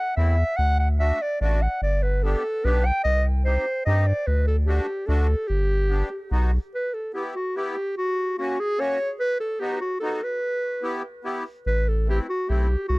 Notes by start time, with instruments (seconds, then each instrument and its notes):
Already playing: clarinet F#5
0.17 analog synth bass E2, accordion A3 C4 E4, clarinet E5
0.57 analog synth bass D2, clarinet F#5
0.80 clarinet F#5
0.99 accordion A3 D4 F#4, clarinet E5
1.22 clarinet D5
1.40 analog synth bass A1, accordion A3 D4 F#4, clarinet D5
1.62 clarinet F#5
1.82 analog synth bass G1, clarinet D5
2.03 clarinet B4
2.23 accordion B3 D4 G4, clarinet A4
2.64 analog synth bass B1, accordion B3 D4 G4, clarinet B4
2.86 clarinet G5
3.04 analog synth bass C2, clarinet D#5
3.45 accordion C4 D#4 G4, clarinet C5
3.85 analog synth bass G2, accordion C4 D#4 G4, clarinet D#5
4.07 clarinet D5
4.27 analog synth bass D2, clarinet B4
4.48 clarinet A4
4.67 accordion A3 D4 F#4, clarinet G4
5.07 analog synth bass D2, accordion A3 D4 F#4, clarinet A4
5.48 analog synth bass G1, clarinet G4
5.89 accordion B3 D4 G4
6.31 analog synth bass B1, accordion B3 D#4 F#4
6.75 clarinet B4
6.94 clarinet A4
7.14 accordion B3 E4 G4, clarinet G4
7.36 clarinet F#4
7.55 accordion B3 E4 G4, clarinet G4
7.97 clarinet F#4
8.38 accordion A#3 C#4 F#4, clarinet F#4
8.60 clarinet G#4
8.78 accordion A#3 C#4 F#4, clarinet C#5
9.20 clarinet B4
9.40 clarinet A4
9.60 accordion B3 D#4 F#4, clarinet G4
9.81 clarinet F#4
10.00 accordion B3 D#4 F#4, clarinet A4
10.23 clarinet B4
10.82 accordion B3 E4 G4
11.24 accordion B3 E4 G4
11.66 analog synth bass A1, clarinet B4
11.88 clarinet A4
12.07 accordion A3 C4 E4, clarinet G4
12.29 clarinet F#4
12.48 analog synth bass B1, accordion A3 C4 E4, clarinet G4
12.89 analog synth bass C2, clarinet F#4